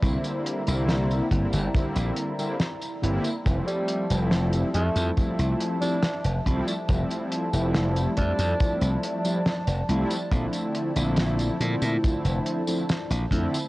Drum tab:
HH |xxxxxxxxxxxxxxxx|xxxxxxxxxxxxxxxx|xxxxxxxxxxxxxxxx|xxxxxxxxxxxxxxxx|
TB |xx-xxx-xxx-xxx-x|xx-xxx-xxx-xxx-x|xx-xxx-xxx-xxx-x|xx-xxx-xxx-xxx-x|
SD |----o-------o---|----o-------o---|----o-------o---|----o-------o---|
BD |o-----o-o-------|o-------o-----o-|o-----o-o-------|o-------o-----o-|